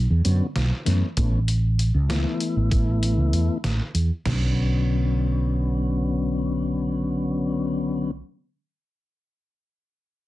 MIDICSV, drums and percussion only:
0, 0, Header, 1, 2, 480
1, 0, Start_track
1, 0, Key_signature, 2, "minor"
1, 0, Tempo, 617284
1, 914, Time_signature, 5, 3, 24, 8
1, 7993, End_track
2, 0, Start_track
2, 0, Title_t, "Drums"
2, 193, Note_on_c, 9, 42, 50
2, 271, Note_off_c, 9, 42, 0
2, 432, Note_on_c, 9, 38, 94
2, 432, Note_on_c, 9, 42, 65
2, 510, Note_off_c, 9, 38, 0
2, 510, Note_off_c, 9, 42, 0
2, 672, Note_on_c, 9, 38, 29
2, 672, Note_on_c, 9, 42, 50
2, 749, Note_off_c, 9, 38, 0
2, 749, Note_off_c, 9, 42, 0
2, 909, Note_on_c, 9, 42, 58
2, 911, Note_on_c, 9, 36, 88
2, 987, Note_off_c, 9, 42, 0
2, 989, Note_off_c, 9, 36, 0
2, 1151, Note_on_c, 9, 42, 53
2, 1229, Note_off_c, 9, 42, 0
2, 1394, Note_on_c, 9, 42, 52
2, 1472, Note_off_c, 9, 42, 0
2, 1631, Note_on_c, 9, 38, 85
2, 1631, Note_on_c, 9, 42, 61
2, 1709, Note_off_c, 9, 38, 0
2, 1709, Note_off_c, 9, 42, 0
2, 1870, Note_on_c, 9, 42, 47
2, 1947, Note_off_c, 9, 42, 0
2, 2111, Note_on_c, 9, 36, 89
2, 2112, Note_on_c, 9, 42, 64
2, 2188, Note_off_c, 9, 36, 0
2, 2190, Note_off_c, 9, 42, 0
2, 2354, Note_on_c, 9, 42, 52
2, 2432, Note_off_c, 9, 42, 0
2, 2591, Note_on_c, 9, 42, 50
2, 2669, Note_off_c, 9, 42, 0
2, 2830, Note_on_c, 9, 38, 93
2, 2830, Note_on_c, 9, 42, 64
2, 2908, Note_off_c, 9, 38, 0
2, 2908, Note_off_c, 9, 42, 0
2, 3070, Note_on_c, 9, 42, 52
2, 3147, Note_off_c, 9, 42, 0
2, 3309, Note_on_c, 9, 38, 66
2, 3309, Note_on_c, 9, 43, 74
2, 3309, Note_on_c, 9, 49, 64
2, 3387, Note_off_c, 9, 38, 0
2, 3387, Note_off_c, 9, 43, 0
2, 3387, Note_off_c, 9, 49, 0
2, 7993, End_track
0, 0, End_of_file